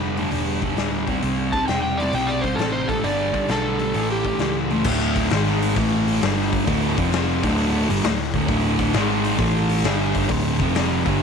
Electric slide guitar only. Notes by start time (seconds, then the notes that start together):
1.52 A5
1.68 G5
1.82 G5
1.97 D5
2.15 G5
2.27 D5
2.41 C5
2.56 A4
2.72 C5
2.88 A4
3.04 D5
3.51 A4
4.12 G4